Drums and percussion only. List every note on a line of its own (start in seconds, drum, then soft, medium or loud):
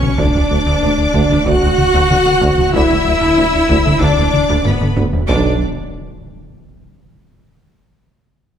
0.03 taiko mid medium
0.18 taiko loud
1.15 taiko medium
1.46 taiko medium
1.78 taiko mid medium
2.11 taiko mid medium
2.42 taiko medium
2.58 taiko mid medium
2.74 taiko loud
3.69 taiko medium
4.01 taiko medium
4.34 taiko mid medium
4.65 taiko low-mid loud
4.81 taiko low-mid loud
4.97 taiko low-mid loud
5.13 taiko low loud